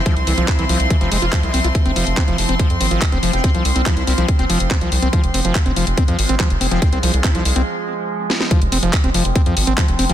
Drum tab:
HH |xxoxxxoxxxoxxxox|xxoxxxoxxxoxxxox|xxoxxxoxxxoxxxox|xxoxxxoxxxoxxxox|
CP |----x-------x---|----x-------x---|----x-------x---|----x-------x---|
SD |----------------|----------------|----------------|----------------|
BD |o---o---o---o---|o---o---o---o---|o---o---o---o---|o---o---o---o---|

HH |xxoxxxox--------|xxoxxxoxxxoxxxox|
CP |----x-----------|----x-------x---|
SD |--------------oo|----------------|
BD |o---o-----------|o---o---o---o---|